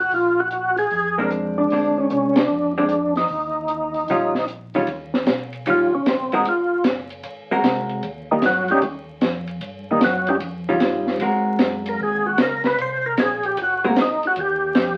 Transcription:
0.00 F#4
0.11 A#1 F4, open hi-hat
0.40 F#4
0.51 closed hi-hat
0.77 G#4, open hi-hat
0.91 F2, open hi-hat
1.18 G#3 C4 D4 A#4
1.31 closed hi-hat
1.58 D4
1.70 D2 G#3 C4 D4, open hi-hat
1.98 C#4
2.10 C2 C#4, closed hi-hat
2.36 D4, snare, ride
2.50 F2
2.78 G#3 C4 D4
2.89 closed hi-hat
3.16 D#4, snare, open hi-hat
3.28 D#2, open hi-hat
3.68 closed hi-hat
3.94 open hi-hat
4.08 A#1 D#3 G3 C#4 F4, open hi-hat
4.35 snare
4.48 closed hi-hat
4.74 D#3 G3 C#4 F4, open hi-hat
4.87 D#2, ride
5.14 snare
5.26 B1, snare, hi-hat pedal, ride
5.53 ride
5.66 A#1 D#3 G3 C#4 F4, ride
5.70 F4
5.93 A#1 C#4
6.06 A1 C4, snare, hi-hat pedal, ride
6.32 G#3 C4 D#4 F#4 A#4, ride
6.45 G#1 F4, ride
6.84 F#1, snare, hi-hat pedal, ride
7.10 ride
7.23 G#1, ride
7.51 G#3 C4 F#4 A#4
7.63 C2, snare, hi-hat pedal, ride
7.89 ride
8.03 D#2, ride
8.31 D#3 G3 A#3 D#4
8.41 G2, snare, hi-hat pedal, ride
8.46 F#3 F#4
8.68 G3 C#4 D#4 G4, ride
8.82 D#2, ride
9.21 F2, snare, hi-hat pedal, ride
9.47 ride
9.61 G2, ride
9.91 D#3 G3 A#3 D#4
10.00 F#2, snare, hi-hat pedal, ride
10.04 F#3 F#4
10.27 G3 C#4 D#4 G4, ride
10.40 F2, ride
10.69 D#3 G3 C#4 F4
10.78 G2, snare, hi-hat pedal, ride
11.07 snare
11.20 G#2 G#3 C4 F#4 A#4, ride
11.59 F#2, snare, hi-hat pedal, ride
11.86 A#4, ride
11.99 D#2
12.03 G#4
12.26 F#4
12.37 C#2, snare, hi-hat pedal, ride
12.42 A#4
12.64 B4, snare, ride
12.78 C2 C5, ride
13.06 A#4
13.17 A#1 G#4, snare, hi-hat pedal, ride
13.43 G4, ride
13.57 F#1, ride
13.62 F#4
13.84 G#3 A#3 C4 F#4 A#4
13.96 G#1, snare, hi-hat pedal, ride
14.02 D#4
14.23 ride
14.27 F#4
14.36 D#2, ride
14.40 G4
14.75 F2, snare, hi-hat pedal, ride

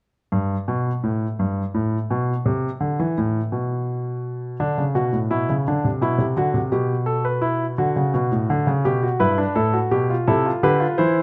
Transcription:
0.32 G2
0.68 B2
1.03 A2
1.39 G2
1.74 A2
2.10 B2
2.46 C3
2.80 D3
3.00 E3
3.18 A2
3.52 B2
4.60 D3 D4
4.78 C#3
4.95 B2 F#4
5.13 A2
5.31 B2 E4
5.49 C#3
5.68 D3 D4
5.85 C3
6.01 B2 E4
6.18 C3
6.37 D3 F#4
6.54 C3
6.72 B2 G4
7.06 A4
7.25 B4
7.42 E4
7.78 D3 F#4
7.96 C#3
8.14 B2
8.32 A2
8.50 D3
8.67 C#3
8.85 B2 G4
9.03 F#4
9.20 G2 E4 B4
9.38 D4
9.56 A2 E4 A4
9.73 F#4
9.91 B2 G4
10.10 F4
10.27 C3 E4 A4
10.46 F4
10.63 D3 G4 B4
10.80 F4
10.98 E3 E4 C5

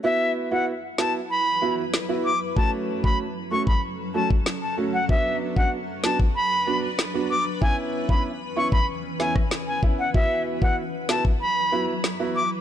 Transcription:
0.04 F#3 B3 E4 F#4 B4 E5
0.51 B3 E4 F#4 F#5
0.98 B3 E4 F#4 A5, snare
1.30 B5
1.62 B3 E4 F#4
1.94 snare
2.09 B3 E4 F#4
2.25 D6
2.56 A3 C#4 F#4 A4 A5, kick
3.04 A3 C#4 F#4 B5, kick
3.51 A3 C#4 F#4 C#6
3.67 B5, kick
4.14 A3 C#4 F#4 A5
4.30 kick
4.46 snare
4.62 A5
4.77 A3 C#4 F#4
4.93 F#5
5.09 B3 D4 F#4 B4 E5, kick
5.56 B3 D4 F#4 F#5, kick
6.03 B3 D4 F#4 A5, snare
6.20 kick
6.35 B5
6.67 B3 D4 F#4
6.99 snare
7.14 B3 D4 F#4
7.30 D6
7.61 E3 B3 C#4 E4 G#5, kick
8.09 B3 C#4 E4 B5, kick
8.56 B3 C#4 E4 C#6
8.72 B5, kick
9.19 B3 C#4 E4 G#5, snare
9.36 kick, cross-stick
9.51 snare
9.67 G#5
9.83 B3 C#4 E4, kick
9.99 F#5
10.14 F#3 B3 E4 F#4 E5, kick
10.61 B3 E4 F#4 F#5, kick
11.09 B3 E4 F#4 A5, snare
11.25 kick
11.41 B5
11.72 B3 E4 F#4
12.04 snare
12.19 B3 E4 F#4
12.36 D6

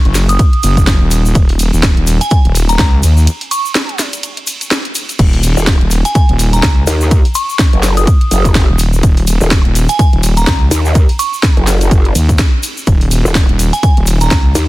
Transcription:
0.05 F#1, closed hi-hat
0.15 snare, open hi-hat, ride, shaker
0.29 D#6, closed hi-hat, shaker
0.39 kick, closed hi-hat, ride, shaker
0.53 closed hi-hat
0.63 F#1, open hi-hat, ride, shaker
0.77 kick, closed hi-hat, shaker
0.87 kick, snare, closed hi-hat, ride, shaker
1.01 D#1
1.11 open hi-hat, ride, shaker
1.25 shaker
1.35 D#1, kick, closed hi-hat, ride, shaker
1.49 open hi-hat
1.59 open hi-hat, ride, shaker
1.73 D#1, shaker
1.83 kick, snare, closed hi-hat, ride, shaker
1.97 D#1, closed hi-hat
2.07 open hi-hat, ride, shaker
2.21 G#5, closed hi-hat, shaker
2.31 G#5, kick, closed hi-hat, ride, shaker
2.45 D#1, closed hi-hat
2.55 open hi-hat, ride, shaker
2.69 A#5, closed hi-hat, shaker
2.79 C#2 A#5, kick, snare, closed hi-hat, ride, shaker
3.03 D#2, open hi-hat, ride, shaker
3.17 shaker
3.27 closed hi-hat, ride, shaker
3.41 open hi-hat
3.51 C#6, open hi-hat, ride, shaker
3.65 shaker
3.75 snare, closed hi-hat, ride, shaker
3.89 closed hi-hat
3.99 snare, open hi-hat, ride, shaker
4.13 closed hi-hat, shaker
4.23 closed hi-hat, ride, shaker
4.37 closed hi-hat
4.47 open hi-hat, ride, shaker
4.61 closed hi-hat, shaker
4.71 snare, closed hi-hat, ride, shaker
4.85 closed hi-hat
4.95 open hi-hat, ride, shaker
5.09 closed hi-hat, shaker
5.19 D#1, kick, closed hi-hat, crash, ride, shaker
5.33 open hi-hat
5.43 open hi-hat, ride, shaker
5.57 D#1, shaker
5.67 kick, snare, closed hi-hat, ride, shaker
5.81 D#1, closed hi-hat
5.91 open hi-hat, ride, shaker
6.05 G#5, closed hi-hat, shaker
6.15 G#5, kick, closed hi-hat, ride, shaker
6.29 D#1, closed hi-hat
6.39 open hi-hat, ride, shaker
6.53 A#5, closed hi-hat, shaker
6.63 C#2 A#5, kick, snare, closed hi-hat, ride, shaker
6.87 D#2, open hi-hat, ride, shaker
7.01 shaker
7.11 kick, closed hi-hat, ride, shaker
7.25 open hi-hat
7.35 C#6, open hi-hat, ride, shaker
7.49 shaker
7.59 kick, snare, closed hi-hat, shaker
7.73 F#1, closed hi-hat
7.83 snare, open hi-hat, ride, shaker
7.97 D#6, closed hi-hat, shaker
8.07 kick, closed hi-hat, ride, shaker
8.21 closed hi-hat
8.31 F#1, open hi-hat, ride, shaker
8.45 kick, closed hi-hat, shaker
8.55 kick, snare, closed hi-hat, ride, shaker
8.69 D#1
8.79 open hi-hat, ride, shaker
8.93 shaker
9.03 D#1, kick, closed hi-hat, ride, shaker
9.17 open hi-hat
9.27 open hi-hat, ride, shaker
9.41 D#1, shaker
9.51 kick, snare, closed hi-hat, ride, shaker
9.65 D#1, closed hi-hat
9.75 open hi-hat, ride, shaker
9.89 G#5, closed hi-hat, shaker
9.99 G#5, kick, closed hi-hat, ride, shaker
10.13 D#1, closed hi-hat
10.23 open hi-hat, ride, shaker
10.37 A#5, closed hi-hat, shaker
10.47 C#2, kick, snare, closed hi-hat, shaker
10.71 D#2, open hi-hat, ride, shaker
10.85 shaker
10.95 kick, closed hi-hat, ride, shaker
11.09 open hi-hat
11.19 C#6, open hi-hat, ride, shaker
11.33 shaker
11.43 kick, snare, closed hi-hat, ride, shaker
11.57 F#1, closed hi-hat
11.67 snare, open hi-hat, ride, shaker
11.81 closed hi-hat, shaker
11.91 F#1, kick, closed hi-hat, ride, shaker
12.05 closed hi-hat
12.15 D#2, open hi-hat, ride, shaker
12.29 kick, closed hi-hat, shaker
12.38 kick, snare, closed hi-hat, ride, shaker
12.63 open hi-hat, ride, shaker
12.77 shaker
12.87 D#1, kick, closed hi-hat, ride, shaker
13.01 open hi-hat
13.11 open hi-hat, ride, shaker
13.25 D#1, shaker
13.35 kick, snare, closed hi-hat, shaker
13.49 D#1, closed hi-hat
13.59 open hi-hat, ride, shaker
13.73 G#5, closed hi-hat, shaker
13.83 G#5, kick, closed hi-hat, ride, shaker
13.97 D#1, closed hi-hat
14.07 open hi-hat, ride, shaker
14.21 A#5, closed hi-hat, shaker
14.31 C#2 A#5, kick, snare, closed hi-hat, ride, shaker
14.55 D#2, open hi-hat, ride, shaker

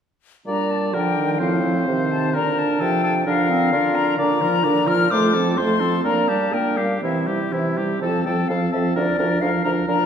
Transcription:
0.46 A#2 G3 D4 D5 A#5
0.71 A5
0.94 D3 F3 D4 A#4 G5
1.17 D#3
1.34 G5
1.40 A2 F3 C4 C5 F5
1.64 F3
1.88 C3 D#3 C4
2.11 A5
2.34 A#2 D3 D4 A#4 A#5
2.58 A5
2.80 C3 F3 A4 G5
3.03 A4
3.26 D3 F3 D4 A#4 F5
3.49 C4
3.72 D3 D4 F4 A#4
3.95 A#5
4.18 A#2 D3 D4 D5 A#5
4.41 F3 F4 A#4
4.63 A#2 D3 D4 D5
4.87 F3 F4 A#4 F6
5.10 F2 A3 F4 C5 D6
5.34 F3 C4 A4
5.57 F2 A3 F4 C5 C6
5.80 F3 C4 A4
6.04 A#2 A#3 D4 A#4 A#5
6.28 G3 A#3 G4 A5
6.52 A#2 A#3 D4 A#4 G5
6.77 G3 A#3 G4 F5
7.02 C3 E3 C4 E4 E5
7.27 G3 E4 G4
7.52 C3 E3 C4 E4
7.77 G3 E4 G4
8.01 F2 F3 C4 A4 A5
8.25 F2 F3 C4 A4 G5
8.48 F2 F3 C4 A4 F5
8.72 F2 F3 C4 A4 E5
8.95 D2 F3 D4 A#4 D5
9.18 D2 F3 D4 A#4
9.41 D2 F3 D4 A#4 F5
9.64 D2 F3 D4 A#4 A#5
9.87 A#2 F3 D4 A#4 A#5

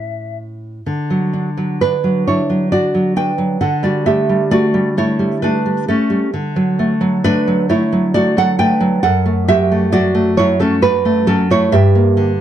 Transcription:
Already playing: A2 C#4 E4 E5
0.86 D3
1.10 F#3
1.33 D4
1.57 F#3
1.81 D4 B4
2.04 F#3
2.27 D4 E4 C#5
2.50 F#3
2.72 D4 F#4 D5
2.94 F#3
3.16 D4 B4 G5
3.38 F#3
3.61 D3 A4 F#5
3.83 G3 F#4 D5
4.06 A3 G4 E5
4.29 G3
4.51 A3 F#4 D5
4.74 G3
4.97 A3 E4 C#5
5.19 G3
5.42 A3 D4 B4
5.66 G3
5.88 A3 C#4 A4
6.10 G3
6.34 D3
6.56 F#3
6.79 A3
7.01 F#3
7.24 A3 D4 B4
7.47 F#3
7.69 A3 E4 C#5
7.92 F#3
8.14 A3 F#4 D5
8.37 F#3 A4 F#5
8.59 A3 B4 G5
8.80 F#3
9.03 F#2 A4 F#5
9.26 A3
9.48 F#3 G4 E5
9.71 A3
9.92 F#3 F#4 D5
10.15 A3
10.37 F#3 E4 C#5
10.60 A3 C#4 A4
10.82 F#3 D4 B4
11.05 A3
11.27 F#3 C#4 A4
11.50 A3 E4 C#5
11.72 G2 G4 E5
11.95 A#3
12.17 D3

